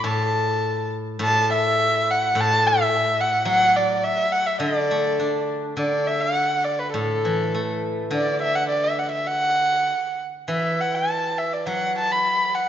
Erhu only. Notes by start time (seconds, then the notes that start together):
0.07 A5
1.24 A5
1.53 E5
2.11 F#5
2.41 A5
2.67 E5
3.21 F#5
3.48 F#5
3.76 D5
4.04 E5
4.32 F#5
4.46 E5
4.62 D5
5.78 D5
6.07 E5
6.21 F#5
6.64 D5
6.79 B4
6.94 A4
8.14 D5
8.42 E5
8.55 F#5
8.69 D5
8.84 E5
8.99 F#5
9.12 E5
9.27 F#5
10.50 E5
10.81 F#5
10.95 A5
11.38 E5
11.53 D5
11.69 F#5
11.99 A5
12.12 B5
12.55 F#5